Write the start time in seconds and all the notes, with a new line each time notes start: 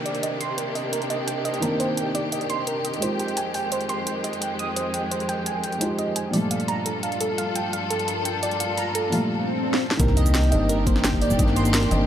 Already playing: C3 D#3 A#3 C4 D4 G4, downlifter
0.05 D5, closed hi-hat
0.15 closed hi-hat
0.23 D#5, closed hi-hat
0.40 C6, closed hi-hat
0.58 A#4, closed hi-hat
0.75 D#5, open hi-hat
0.93 A#4, closed hi-hat
1.02 closed hi-hat
1.10 D#5, closed hi-hat
1.27 G5, closed hi-hat
1.45 D#5, closed hi-hat
1.54 closed hi-hat
1.60 D#3 A#3 C4 A#4, closed hi-hat
1.65 D4
1.80 C5, closed hi-hat
1.97 G5, closed hi-hat
2.15 D5, closed hi-hat
2.32 D#5, closed hi-hat
2.41 closed hi-hat
2.50 C6, closed hi-hat
2.67 A#4, closed hi-hat
2.85 D#5, closed hi-hat
2.94 closed hi-hat
2.99 F2 G#3 C4 D#4 F4 C5, closed hi-hat
3.04 G4
3.19 G5, closed hi-hat
3.28 closed hi-hat
3.37 G#5, closed hi-hat
3.54 G5, open hi-hat
3.72 C5, closed hi-hat
3.81 closed hi-hat
3.89 C6, closed hi-hat
4.07 G5, closed hi-hat
4.24 D#5, closed hi-hat
4.33 closed hi-hat
4.42 G5, closed hi-hat
4.59 D#6, closed hi-hat
4.76 C5, closed hi-hat
4.94 G5, closed hi-hat
5.11 C5, closed hi-hat
5.20 closed hi-hat
5.29 G5, closed hi-hat
5.46 G#5, closed hi-hat
5.64 G5, closed hi-hat
5.72 closed hi-hat
5.78 G#3 D#4 F4 C5, closed hi-hat
5.83 G4
5.99 D#5, closed hi-hat
6.16 G#5, closed hi-hat
6.31 G2 A#2 F3 G3 D4 F4 A4 D5, open hi-hat
6.36 A3
6.51 F5, closed hi-hat
6.60 closed hi-hat
6.68 A#5, closed hi-hat
6.85 A4, closed hi-hat
7.03 F5, closed hi-hat
7.12 closed hi-hat
7.21 A4, closed hi-hat
7.38 F5, closed hi-hat
7.56 G5, closed hi-hat
7.73 F5, closed hi-hat
7.90 A4, closed hi-hat
7.99 closed hi-hat
8.08 A#4, closed hi-hat
8.25 G5, closed hi-hat
8.43 D5, closed hi-hat
8.51 closed hi-hat
8.60 F5, closed hi-hat
8.78 A#5, closed hi-hat
8.95 A4, closed hi-hat
9.10 A#2 F3 G3 F5, open hi-hat
9.15 A3
9.30 swell
9.74 snare
9.91 snare
9.97 C2 D#3 A#3 C4 D4 G4 A#4, kick, closed hi-hat, sub drop, cabasa
10.02 D4
10.08 snare
10.17 D#5, closed hi-hat, cabasa
10.26 closed hi-hat, cabasa
10.34 G5, snare, closed hi-hat, cabasa
10.43 closed hi-hat
10.51 G1 D#3 A#3 C4 D4 D#5, closed hi-hat, cabasa
10.69 A#4, closed hi-hat, cabasa
10.84 D#3 A#3 C4 C5, kick, closed hi-hat, cabasa
10.89 D4
10.96 snare
11.04 G5, snare, closed hi-hat, cabasa
11.13 kick
11.22 D5, open hi-hat
11.30 G1, cabasa
11.37 D#3 A#3 C4 D#5, kick, closed hi-hat, cabasa
11.42 D4
11.48 snare
11.56 C6, closed hi-hat, cabasa
11.65 closed hi-hat, cabasa
11.74 A#4, snare, closed hi-hat, cabasa
11.83 closed hi-hat
11.90 G1 D#3 A#3 C4 D4 D#5, closed hi-hat, cabasa